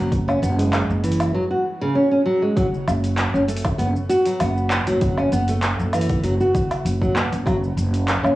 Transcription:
Already playing: upright bass F#1, nylon-string guitar F#3
0.12 kick, open hi-hat, shaker
0.28 nylon-string guitar C#4, low woodblock, shaker
0.42 upright bass F#1, nylon-string guitar B3, open hi-hat, shaker
0.58 nylon-string guitar G#3, open hi-hat, shaker
0.73 clap, open hi-hat, low woodblock, shaker
0.90 upright bass F#1, shaker
1.04 nylon-string guitar E3, open hi-hat, shaker
1.12 open hi-hat
1.20 open hi-hat, low woodblock, shaker
1.34 nylon-string guitar F#3
1.50 nylon-string guitar F#4
1.81 nylon-string guitar C#3
1.95 nylon-string guitar C#4
2.11 nylon-string guitar C#4
2.26 nylon-string guitar F#3
2.42 nylon-string guitar G#3
2.56 nylon-string guitar F#3, kick, open hi-hat, shaker
2.74 shaker
2.88 upright bass F#1, open hi-hat, low woodblock, shaker
3.04 open hi-hat, shaker
3.18 clap, open hi-hat, shaker
3.34 upright bass F#1, nylon-string guitar C#4, shaker
3.48 nylon-string guitar A3, open hi-hat, shaker
3.57 open hi-hat
3.65 kick, open hi-hat, low woodblock, shaker
3.78 upright bass F#1, nylon-string guitar B3, open hi-hat, shaker
3.96 shaker
4.09 nylon-string guitar F#4, open hi-hat, shaker
4.26 nylon-string guitar F#3, open hi-hat, shaker
4.40 upright bass F#1, nylon-string guitar B3, open hi-hat, low woodblock, shaker
4.58 shaker
4.71 clap, shaker
4.87 upright bass F#1, nylon-string guitar F#3, open hi-hat, shaker
5.01 kick, open hi-hat, shaker
5.18 nylon-string guitar C#4, low woodblock, shaker
5.32 upright bass F#1, nylon-string guitar B3, open hi-hat, shaker
5.48 nylon-string guitar A3, open hi-hat, shaker
5.63 clap, open hi-hat, shaker
5.79 upright bass F#1, shaker
5.93 nylon-string guitar E3, open hi-hat, low woodblock, shaker
6.01 open hi-hat
6.09 kick, open hi-hat, shaker
6.23 upright bass F#1, nylon-string guitar F#3, open hi-hat, shaker
6.40 nylon-string guitar F#4, shaker
6.55 kick, open hi-hat, shaker
6.71 open hi-hat, low woodblock, shaker
6.85 upright bass F#1, open hi-hat, shaker
7.01 nylon-string guitar F#3, kick, shaker
7.15 nylon-string guitar B3, clap, shaker
7.32 upright bass F#1, open hi-hat, shaker
7.46 nylon-string guitar F#3, kick, open hi-hat, low woodblock, shaker
7.64 shaker
7.77 upright bass F#1, open hi-hat, shaker
7.94 open hi-hat, shaker
8.08 clap, open hi-hat, shaker
8.23 upright bass F#1, nylon-string guitar C#4, low woodblock, shaker

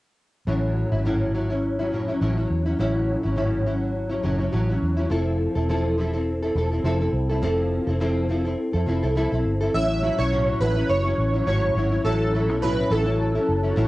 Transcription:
0.47 fingered electric bass A1, nylon-string guitar A2 F#3 C#4 E4
0.92 fingered electric bass G#1, nylon-string guitar F#3 C#4 E4
1.05 nylon-string guitar A2 F#3 C#4 E4
1.34 nylon-string guitar A2 F#3 C#4 E4
1.50 nylon-string guitar F#3 C#4 E4
1.79 nylon-string guitar F#3 C#4 E4
1.92 fingered electric bass F#1, nylon-string guitar A2 F#3 C#4 E4
2.08 nylon-string guitar F#3 C#4 E4
2.21 fingered electric bass A1, nylon-string guitar A2 F#3 C#4 E4
2.37 nylon-string guitar F#3 C#4 E4
2.50 fingered electric bass E2
2.66 nylon-string guitar F#3 C#4 E4
2.79 fingered electric bass A1, nylon-string guitar A2 F#3 C#4 E4
3.23 fingered electric bass G#1, nylon-string guitar F#3 C#4 E4
3.36 nylon-string guitar A2 F#3 C#4 E4
3.66 nylon-string guitar F#3 C#4 E4
4.09 nylon-string guitar F#3 C#4 E4
4.22 fingered electric bass F#1, nylon-string guitar A2 F#3 C#4 E4
4.38 nylon-string guitar F#3 C#4 E4
4.52 fingered electric bass A1, nylon-string guitar A2 F#3 C#4 E4
4.69 nylon-string guitar F#3 C#4 E4
4.82 fingered electric bass E2
4.97 nylon-string guitar F#3 C#4 E4
5.10 fingered electric bass F1, nylon-string guitar F3 C4 E4 A4
5.55 fingered electric bass E1, nylon-string guitar C4 E4 A4
5.69 nylon-string guitar F3 C4 E4 A4
5.98 nylon-string guitar F3 C4 E4 A4
6.13 nylon-string guitar C4 E4 A4
6.43 nylon-string guitar C4 E4 A4
6.55 fingered electric bass E1, nylon-string guitar F3 C4 E4 A4
6.72 nylon-string guitar C4 E4 A4
6.84 fingered electric bass F1, nylon-string guitar F3 C4 E4 A4
7.01 nylon-string guitar C4 E4 A4
7.13 fingered electric bass C2
7.30 nylon-string guitar C4 E4 A4
7.42 fingered electric bass F1, nylon-string guitar F3 C4 E4 A4
7.87 fingered electric bass F1, nylon-string guitar C4 E4 A4
8.00 nylon-string guitar F3 C4 E4 A4
8.29 nylon-string guitar F3 C4 E4 A4
8.45 nylon-string guitar C4 E4 A4
8.73 fingered electric bass F2, nylon-string guitar C4 E4 A4
8.86 fingered electric bass F1, nylon-string guitar F3 C4 E4 A4
9.03 fingered electric bass C2, nylon-string guitar C4 E4 A4
9.15 nylon-string guitar F3 C4 E4 A4
9.32 fingered electric bass B1, nylon-string guitar C4 E4 A4
9.45 fingered electric bass G1
9.61 nylon-string guitar C4 E4 A4
9.74 fingered electric bass A1, nylon-string guitar A2 F#3 C#4 E4, synth keys E5
10.02 nylon-string guitar A2 F#3 C#4 E4
10.18 fingered electric bass B1, nylon-string guitar F#3 C#4 E4, synth keys C#5
10.32 nylon-string guitar A2 F#3 C#4 E4
10.60 fingered electric bass A1, nylon-string guitar A2 F#3 C#4 E4, synth keys B4
10.76 nylon-string guitar F#3 C#4 E4
10.89 fingered electric bass F#1, synth keys C#5
11.04 nylon-string guitar F#3 C#4 E4
11.18 fingered electric bass A1
11.33 nylon-string guitar F#3 C#4 E4
11.46 fingered electric bass G#1, nylon-string guitar A2 F#3 C#4 E4, synth keys C#5
11.75 fingered electric bass G#1, nylon-string guitar A2 F#3 C#4 E4
11.92 nylon-string guitar F#3 C#4 E4
12.04 fingered electric bass A1, nylon-string guitar A2 F#3 C#4 E4, synth keys A4
12.33 nylon-string guitar A2 F#3 C#4 E4
12.49 fingered electric bass B1, nylon-string guitar F#3 C#4 E4
12.62 nylon-string guitar A2 F#3 C#4 E4, synth keys B4
12.91 fingered electric bass A1, nylon-string guitar A2 F#3 C#4 E4, synth keys A4
13.06 nylon-string guitar F#3 C#4 E4
13.35 nylon-string guitar F#3 C#4 E4
13.49 fingered electric bass F#1
13.63 nylon-string guitar F#3 C#4 E4
13.76 fingered electric bass A1, nylon-string guitar A2 F#3 C#4 E4

